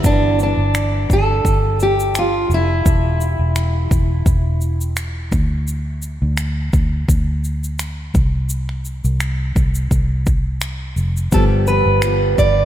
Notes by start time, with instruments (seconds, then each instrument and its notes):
Already playing: steel-string acoustic guitar G3 B3
0.04 fingered electric bass G1, steel-string acoustic guitar D4, kick, shaker
0.39 steel-string acoustic guitar D4, shaker
0.57 fingered electric bass G1
0.75 finger snap, shaker
1.10 fingered electric bass G1, steel-string acoustic guitar A4, kick, shaker
1.44 fingered electric bass G1, kick, shaker
1.80 steel-string acoustic guitar G4, shaker
2.00 shaker
2.15 steel-string acoustic guitar F4, finger snap, shaker
2.49 fingered electric bass F1, shaker
2.54 steel-string acoustic guitar E4
2.86 fingered electric bass E1, kick, shaker
3.21 shaker
3.39 fingered electric bass E1
3.56 finger snap, shaker
3.91 fingered electric bass E1, kick, shaker
4.26 fingered electric bass E1, kick, shaker
4.61 shaker
4.81 shaker
4.96 finger snap, shaker
5.32 fingered electric bass D2, kick, shaker
5.68 shaker
6.02 shaker
6.22 fingered electric bass D2
6.37 finger snap, shaker
6.73 fingered electric bass D2, kick, shaker
7.08 fingered electric bass D2, kick, shaker
7.44 shaker
7.64 shaker
7.79 finger snap, shaker
8.14 fingered electric bass C2, kick, shaker
8.50 shaker
8.69 finger snap
8.85 shaker
9.04 fingered electric bass C2, shaker
9.20 finger snap, shaker
9.55 fingered electric bass C2, kick, shaker
9.75 shaker
9.91 fingered electric bass C2, kick, shaker
10.26 kick, shaker
10.61 finger snap, shaker
10.96 fingered electric bass F1, shaker
11.17 shaker
11.32 fingered electric bass G1, steel-string acoustic guitar G2 D3 F3 G3 B3 G4 A4, kick, shaker
11.67 steel-string acoustic guitar B4, shaker
11.86 fingered electric bass G1
12.02 steel-string acoustic guitar F3 G3 B3 G4, finger snap, shaker
12.38 fingered electric bass G1, steel-string acoustic guitar D5, kick, shaker